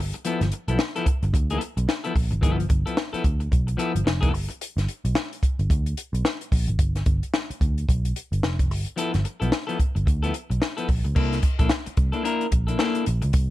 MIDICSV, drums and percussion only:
0, 0, Header, 1, 2, 480
1, 0, Start_track
1, 0, Tempo, 545455
1, 218, Time_signature, 4, 2, 24, 8
1, 11882, End_track
2, 0, Start_track
2, 0, Title_t, "Drums"
2, 117, Note_on_c, 9, 42, 52
2, 205, Note_off_c, 9, 42, 0
2, 217, Note_on_c, 9, 42, 91
2, 305, Note_off_c, 9, 42, 0
2, 362, Note_on_c, 9, 42, 52
2, 365, Note_on_c, 9, 38, 42
2, 450, Note_off_c, 9, 42, 0
2, 453, Note_off_c, 9, 38, 0
2, 454, Note_on_c, 9, 42, 67
2, 542, Note_off_c, 9, 42, 0
2, 600, Note_on_c, 9, 42, 54
2, 688, Note_off_c, 9, 42, 0
2, 693, Note_on_c, 9, 38, 110
2, 781, Note_off_c, 9, 38, 0
2, 843, Note_on_c, 9, 42, 56
2, 931, Note_off_c, 9, 42, 0
2, 935, Note_on_c, 9, 36, 90
2, 936, Note_on_c, 9, 42, 68
2, 1023, Note_off_c, 9, 36, 0
2, 1024, Note_off_c, 9, 42, 0
2, 1079, Note_on_c, 9, 42, 39
2, 1167, Note_off_c, 9, 42, 0
2, 1177, Note_on_c, 9, 36, 93
2, 1183, Note_on_c, 9, 42, 79
2, 1265, Note_off_c, 9, 36, 0
2, 1271, Note_off_c, 9, 42, 0
2, 1320, Note_on_c, 9, 42, 54
2, 1408, Note_off_c, 9, 42, 0
2, 1417, Note_on_c, 9, 42, 91
2, 1505, Note_off_c, 9, 42, 0
2, 1561, Note_on_c, 9, 42, 57
2, 1649, Note_off_c, 9, 42, 0
2, 1660, Note_on_c, 9, 38, 104
2, 1748, Note_off_c, 9, 38, 0
2, 1797, Note_on_c, 9, 42, 53
2, 1885, Note_off_c, 9, 42, 0
2, 1897, Note_on_c, 9, 36, 91
2, 1900, Note_on_c, 9, 46, 85
2, 1985, Note_off_c, 9, 36, 0
2, 1988, Note_off_c, 9, 46, 0
2, 2037, Note_on_c, 9, 42, 50
2, 2125, Note_off_c, 9, 42, 0
2, 2137, Note_on_c, 9, 36, 108
2, 2139, Note_on_c, 9, 42, 103
2, 2225, Note_off_c, 9, 36, 0
2, 2227, Note_off_c, 9, 42, 0
2, 2287, Note_on_c, 9, 42, 53
2, 2373, Note_off_c, 9, 42, 0
2, 2373, Note_on_c, 9, 42, 65
2, 2375, Note_on_c, 9, 36, 101
2, 2461, Note_off_c, 9, 42, 0
2, 2463, Note_off_c, 9, 36, 0
2, 2524, Note_on_c, 9, 42, 57
2, 2612, Note_off_c, 9, 42, 0
2, 2615, Note_on_c, 9, 38, 112
2, 2703, Note_off_c, 9, 38, 0
2, 2763, Note_on_c, 9, 42, 57
2, 2851, Note_off_c, 9, 42, 0
2, 2854, Note_on_c, 9, 36, 85
2, 2855, Note_on_c, 9, 42, 72
2, 2942, Note_off_c, 9, 36, 0
2, 2943, Note_off_c, 9, 42, 0
2, 2995, Note_on_c, 9, 42, 41
2, 3083, Note_off_c, 9, 42, 0
2, 3097, Note_on_c, 9, 36, 87
2, 3103, Note_on_c, 9, 42, 72
2, 3185, Note_off_c, 9, 36, 0
2, 3191, Note_off_c, 9, 42, 0
2, 3237, Note_on_c, 9, 42, 50
2, 3325, Note_off_c, 9, 42, 0
2, 3336, Note_on_c, 9, 42, 85
2, 3424, Note_off_c, 9, 42, 0
2, 3483, Note_on_c, 9, 42, 60
2, 3571, Note_off_c, 9, 42, 0
2, 3581, Note_on_c, 9, 38, 101
2, 3669, Note_off_c, 9, 38, 0
2, 3718, Note_on_c, 9, 42, 61
2, 3720, Note_on_c, 9, 36, 92
2, 3806, Note_off_c, 9, 42, 0
2, 3808, Note_off_c, 9, 36, 0
2, 3822, Note_on_c, 9, 46, 80
2, 3910, Note_off_c, 9, 46, 0
2, 3962, Note_on_c, 9, 42, 45
2, 4050, Note_off_c, 9, 42, 0
2, 4060, Note_on_c, 9, 42, 101
2, 4148, Note_off_c, 9, 42, 0
2, 4206, Note_on_c, 9, 42, 55
2, 4209, Note_on_c, 9, 38, 39
2, 4294, Note_off_c, 9, 42, 0
2, 4297, Note_off_c, 9, 38, 0
2, 4298, Note_on_c, 9, 42, 74
2, 4386, Note_off_c, 9, 42, 0
2, 4444, Note_on_c, 9, 42, 58
2, 4532, Note_off_c, 9, 42, 0
2, 4535, Note_on_c, 9, 38, 112
2, 4623, Note_off_c, 9, 38, 0
2, 4687, Note_on_c, 9, 42, 54
2, 4775, Note_off_c, 9, 42, 0
2, 4776, Note_on_c, 9, 36, 83
2, 4779, Note_on_c, 9, 42, 74
2, 4864, Note_off_c, 9, 36, 0
2, 4867, Note_off_c, 9, 42, 0
2, 4922, Note_on_c, 9, 42, 42
2, 5010, Note_off_c, 9, 42, 0
2, 5016, Note_on_c, 9, 36, 87
2, 5021, Note_on_c, 9, 42, 81
2, 5104, Note_off_c, 9, 36, 0
2, 5109, Note_off_c, 9, 42, 0
2, 5159, Note_on_c, 9, 42, 53
2, 5247, Note_off_c, 9, 42, 0
2, 5256, Note_on_c, 9, 42, 97
2, 5344, Note_off_c, 9, 42, 0
2, 5407, Note_on_c, 9, 42, 56
2, 5495, Note_off_c, 9, 42, 0
2, 5499, Note_on_c, 9, 38, 96
2, 5587, Note_off_c, 9, 38, 0
2, 5641, Note_on_c, 9, 42, 59
2, 5729, Note_off_c, 9, 42, 0
2, 5737, Note_on_c, 9, 36, 89
2, 5739, Note_on_c, 9, 46, 93
2, 5825, Note_off_c, 9, 36, 0
2, 5827, Note_off_c, 9, 46, 0
2, 5875, Note_on_c, 9, 42, 48
2, 5963, Note_off_c, 9, 42, 0
2, 5974, Note_on_c, 9, 36, 109
2, 5975, Note_on_c, 9, 42, 90
2, 6062, Note_off_c, 9, 36, 0
2, 6063, Note_off_c, 9, 42, 0
2, 6120, Note_on_c, 9, 42, 52
2, 6123, Note_on_c, 9, 38, 40
2, 6208, Note_off_c, 9, 42, 0
2, 6211, Note_off_c, 9, 38, 0
2, 6211, Note_on_c, 9, 42, 65
2, 6215, Note_on_c, 9, 36, 102
2, 6299, Note_off_c, 9, 42, 0
2, 6303, Note_off_c, 9, 36, 0
2, 6362, Note_on_c, 9, 42, 53
2, 6450, Note_off_c, 9, 42, 0
2, 6456, Note_on_c, 9, 38, 111
2, 6544, Note_off_c, 9, 38, 0
2, 6605, Note_on_c, 9, 42, 60
2, 6693, Note_off_c, 9, 42, 0
2, 6697, Note_on_c, 9, 36, 85
2, 6700, Note_on_c, 9, 42, 70
2, 6785, Note_off_c, 9, 36, 0
2, 6788, Note_off_c, 9, 42, 0
2, 6844, Note_on_c, 9, 42, 45
2, 6932, Note_off_c, 9, 42, 0
2, 6939, Note_on_c, 9, 36, 95
2, 6947, Note_on_c, 9, 42, 77
2, 7027, Note_off_c, 9, 36, 0
2, 7035, Note_off_c, 9, 42, 0
2, 7084, Note_on_c, 9, 42, 55
2, 7172, Note_off_c, 9, 42, 0
2, 7182, Note_on_c, 9, 42, 89
2, 7270, Note_off_c, 9, 42, 0
2, 7328, Note_on_c, 9, 42, 54
2, 7416, Note_off_c, 9, 42, 0
2, 7421, Note_on_c, 9, 38, 94
2, 7509, Note_off_c, 9, 38, 0
2, 7563, Note_on_c, 9, 36, 86
2, 7563, Note_on_c, 9, 42, 59
2, 7651, Note_off_c, 9, 36, 0
2, 7651, Note_off_c, 9, 42, 0
2, 7666, Note_on_c, 9, 46, 82
2, 7754, Note_off_c, 9, 46, 0
2, 7799, Note_on_c, 9, 42, 46
2, 7887, Note_off_c, 9, 42, 0
2, 7899, Note_on_c, 9, 42, 99
2, 7987, Note_off_c, 9, 42, 0
2, 8043, Note_on_c, 9, 42, 53
2, 8046, Note_on_c, 9, 38, 41
2, 8131, Note_off_c, 9, 42, 0
2, 8134, Note_off_c, 9, 38, 0
2, 8139, Note_on_c, 9, 42, 73
2, 8227, Note_off_c, 9, 42, 0
2, 8287, Note_on_c, 9, 42, 54
2, 8375, Note_off_c, 9, 42, 0
2, 8379, Note_on_c, 9, 38, 110
2, 8467, Note_off_c, 9, 38, 0
2, 8526, Note_on_c, 9, 42, 51
2, 8614, Note_off_c, 9, 42, 0
2, 8620, Note_on_c, 9, 36, 83
2, 8622, Note_on_c, 9, 42, 68
2, 8708, Note_off_c, 9, 36, 0
2, 8710, Note_off_c, 9, 42, 0
2, 8766, Note_on_c, 9, 42, 44
2, 8854, Note_off_c, 9, 42, 0
2, 8862, Note_on_c, 9, 36, 88
2, 8869, Note_on_c, 9, 42, 82
2, 8950, Note_off_c, 9, 36, 0
2, 8957, Note_off_c, 9, 42, 0
2, 9007, Note_on_c, 9, 42, 50
2, 9095, Note_off_c, 9, 42, 0
2, 9100, Note_on_c, 9, 42, 98
2, 9188, Note_off_c, 9, 42, 0
2, 9250, Note_on_c, 9, 42, 51
2, 9338, Note_off_c, 9, 42, 0
2, 9343, Note_on_c, 9, 38, 101
2, 9431, Note_off_c, 9, 38, 0
2, 9483, Note_on_c, 9, 42, 58
2, 9571, Note_off_c, 9, 42, 0
2, 9579, Note_on_c, 9, 46, 88
2, 9581, Note_on_c, 9, 36, 94
2, 9667, Note_off_c, 9, 46, 0
2, 9669, Note_off_c, 9, 36, 0
2, 9720, Note_on_c, 9, 42, 46
2, 9808, Note_off_c, 9, 42, 0
2, 9821, Note_on_c, 9, 36, 108
2, 9821, Note_on_c, 9, 49, 105
2, 9909, Note_off_c, 9, 36, 0
2, 9909, Note_off_c, 9, 49, 0
2, 9967, Note_on_c, 9, 42, 53
2, 9970, Note_on_c, 9, 38, 41
2, 10054, Note_off_c, 9, 42, 0
2, 10054, Note_on_c, 9, 42, 69
2, 10058, Note_off_c, 9, 38, 0
2, 10059, Note_on_c, 9, 36, 102
2, 10142, Note_off_c, 9, 42, 0
2, 10147, Note_off_c, 9, 36, 0
2, 10201, Note_on_c, 9, 42, 54
2, 10202, Note_on_c, 9, 36, 99
2, 10289, Note_off_c, 9, 42, 0
2, 10290, Note_off_c, 9, 36, 0
2, 10291, Note_on_c, 9, 38, 113
2, 10379, Note_off_c, 9, 38, 0
2, 10439, Note_on_c, 9, 42, 60
2, 10527, Note_off_c, 9, 42, 0
2, 10532, Note_on_c, 9, 42, 68
2, 10537, Note_on_c, 9, 36, 98
2, 10620, Note_off_c, 9, 42, 0
2, 10625, Note_off_c, 9, 36, 0
2, 10675, Note_on_c, 9, 42, 41
2, 10763, Note_off_c, 9, 42, 0
2, 10782, Note_on_c, 9, 42, 83
2, 10870, Note_off_c, 9, 42, 0
2, 10920, Note_on_c, 9, 42, 50
2, 11008, Note_off_c, 9, 42, 0
2, 11016, Note_on_c, 9, 42, 95
2, 11019, Note_on_c, 9, 36, 91
2, 11104, Note_off_c, 9, 42, 0
2, 11107, Note_off_c, 9, 36, 0
2, 11160, Note_on_c, 9, 42, 62
2, 11248, Note_off_c, 9, 42, 0
2, 11255, Note_on_c, 9, 38, 97
2, 11343, Note_off_c, 9, 38, 0
2, 11394, Note_on_c, 9, 42, 60
2, 11482, Note_off_c, 9, 42, 0
2, 11495, Note_on_c, 9, 42, 85
2, 11583, Note_off_c, 9, 42, 0
2, 11633, Note_on_c, 9, 42, 51
2, 11721, Note_off_c, 9, 42, 0
2, 11731, Note_on_c, 9, 42, 94
2, 11737, Note_on_c, 9, 36, 109
2, 11819, Note_off_c, 9, 42, 0
2, 11825, Note_off_c, 9, 36, 0
2, 11882, End_track
0, 0, End_of_file